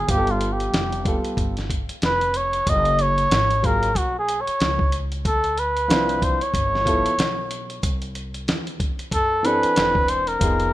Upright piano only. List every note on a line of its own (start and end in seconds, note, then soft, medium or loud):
0.07 1.00 G3 medium
0.07 1.00 B3 medium
0.07 1.01 F4 medium
0.07 0.18 G4 medium
0.18 1.05 A4 medium
1.04 1.53 G3 medium
1.04 1.53 B3 medium
1.04 1.54 F4 medium
1.04 1.54 A4 medium
3.62 3.87 F#3 medium
3.62 3.88 A#3 medium
3.62 3.88 F4 medium
3.62 3.89 G#4 medium
5.88 6.36 F3 medium
5.88 6.38 C4 medium
5.88 6.37 D4 medium
5.88 6.38 E4 medium
6.85 7.10 F3 medium
6.85 7.10 B3 medium
6.85 7.11 E4 medium
6.85 7.12 A4 medium
9.43 10.35 E3 medium
9.43 10.36 C4 medium
9.43 10.36 D4 medium
9.43 10.37 A4 medium
10.40 10.73 F3 medium
10.40 10.73 B3 medium
10.40 10.73 D#4 medium
10.40 10.73 G#4 medium